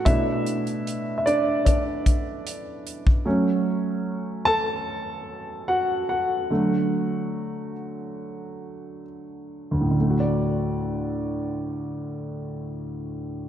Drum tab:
HH |x-xxx-x-x-x-x-x-|----------------|----------------|----------------|
BD |o-------o-o----o|----------------|----------------|----------------|